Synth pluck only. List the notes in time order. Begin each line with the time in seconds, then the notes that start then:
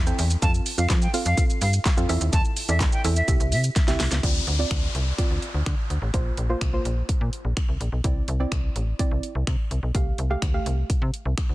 0.06 C4 E4 A4 G5
0.42 C4 F4 A4 F5
0.78 C4 F4 A4 F5
1.13 C4 F4 A4 F5
1.37 C4 F4 A4 F5
1.97 C4 F4 A4 F5
2.09 C4 E4 A4 E5
2.68 C4 E4 A4 D5
3.04 C4 E4 A4 E5
3.28 C4 E4 G4 E5
3.87 C4 E4 G4 E5
4.23 C4 F4 D5
4.59 C4 F4 D5
5.18 C4 F4 D5
6.14 A#3 F4 C5
6.49 A#3 F4 C5
6.73 A#3 F4 C5
8.04 C4 E4 D5
8.40 C4 E4 D5
8.99 C4 E4 D5
9.94 A3 G4 F5
10.30 A3 G4 F5
10.54 A3 G4 F5